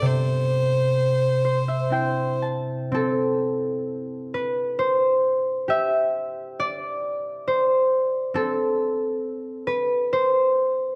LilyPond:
<<
  \new Staff \with { instrumentName = "Fiddle" } { \time 3/4 \key c \major \tempo 4 = 66 c''2~ c''8 r8 | r2. | r2. | r2. | }
  \new Staff \with { instrumentName = "Harp" } { \time 3/4 \key c \major << { r4. c''16 e''16 g''8 a''8 | a'4. b'8 c''4 | e''4 d''4 c''8. r16 | a'4. b'8 c''4 | } \\ { c2 <c' e' c''>4 | c'4. r4. | g'4. r4. | c'4. r4. | } >> }
>>